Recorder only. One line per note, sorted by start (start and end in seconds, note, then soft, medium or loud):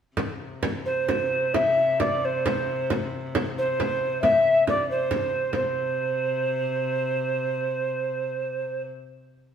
0.86 1.56 C5 medium
1.54 2.02 E5 medium
2.00 2.26 D5 medium
2.25 2.92 C5 medium
3.58 4.21 C5 medium
4.22 4.64 E5 medium
4.68 4.89 D5 medium
4.90 5.51 C5 medium
5.55 8.83 C5 medium